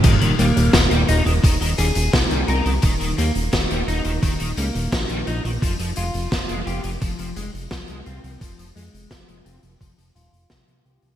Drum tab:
CC |x---------------|----------------|----------------|----------------|
HH |xxxxxxxxxxxxxxxx|xxxxxxxxxxxxxxxx|xxxxxxxxxxxxxxxx|xxxxxxxxxxxxxxxx|
SD |----o-------o---|----o-------o---|----o-------o---|----o-------o---|
BD |o---o---o---o---|o---o---o---o---|o---o---o---o---|o---o---o---o---|